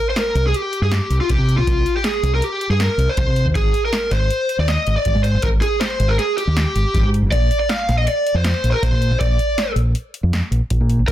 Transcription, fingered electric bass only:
0.35 0.52 C2 medium
0.81 0.99 G2 medium
1.10 1.19 C2 medium
1.29 1.38 C2 medium
1.38 1.59 C3 medium
1.57 1.66 C2 medium
1.67 1.84 C2 medium
2.23 2.40 C2 medium
2.69 2.87 G2 medium
2.97 3.07 C2 medium
3.17 3.26 C2 medium
3.26 3.46 C3 medium
3.45 3.54 D#2 medium
3.55 3.72 G#1 medium
4.11 4.28 G#1 medium
4.58 4.76 D#2 medium
4.87 4.96 G#1 medium
5.06 5.14 G#1 medium
5.15 5.36 G#2 medium
5.34 5.42 G#1 medium
5.43 5.60 G#1 medium
5.99 6.17 G#1 medium
6.47 6.64 D#2 medium
6.75 6.84 G#1 medium
6.94 7.02 G#1 medium
7.03 7.24 G#2 medium
7.22 7.31 G#1 medium
7.32 7.49 A#1 medium
7.89 8.06 A#1 medium
8.34 8.52 F2 medium
8.64 8.72 A#1 medium
8.82 8.91 A#1 medium
8.92 9.12 A#2 medium
9.11 9.19 A#1 medium
9.20 9.37 A#1 medium
9.75 9.93 A#1 medium
10.23 10.40 F2 medium
10.51 10.60 A#1 medium
10.70 10.79 A#1 medium
10.81 11.01 A#2 medium
10.99 11.07 A#1 medium
11.08 11.12 A#1 medium

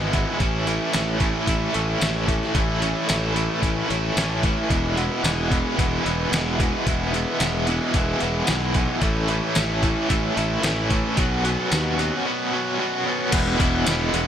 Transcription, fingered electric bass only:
0.00 0.24 G#1 medium
0.40 0.78 A1 medium
0.95 1.32 A1 medium
1.48 1.67 A1 medium
1.75 1.94 A1 medium
2.02 2.39 A1 medium
2.55 2.93 A1 medium
3.10 3.48 A1 medium
3.62 3.82 A1 medium
3.90 4.09 A1 medium
4.17 4.54 A1 medium
4.70 5.08 E1 medium
5.24 5.62 E1 medium
5.79 5.98 E1 medium
6.06 6.25 E1 medium
6.32 6.70 E1 medium
6.87 7.24 E1 medium
7.40 7.78 E1 medium
7.94 8.13 E1 medium
8.23 8.41 E1 medium
8.49 8.86 B1 medium
9.02 9.39 A1 medium
9.57 9.94 A1 medium
10.10 10.29 A1 medium
10.37 10.56 A1 medium
10.64 11.01 A1 medium
11.18 11.56 B1 medium
11.72 12.10 D#2 medium
13.33 13.58 E1 medium
13.60 13.85 E1 medium
13.87 14.12 E1 medium
14.14 14.27 E1 medium

